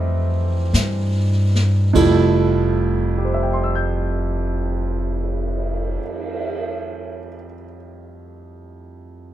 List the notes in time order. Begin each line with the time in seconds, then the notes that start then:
Already playing: F2 E3 G3 A3 C4 D5 D#5 E5
0.73 G2, snare, hi-hat pedal
1.55 snare
1.93 F1 F2 F3 G3 A3 E4, kick, crash
2.78 cymbal swell
3.18 G4
3.25 C5
3.34 E5
3.43 G5
3.53 C6
3.64 E6
3.75 G6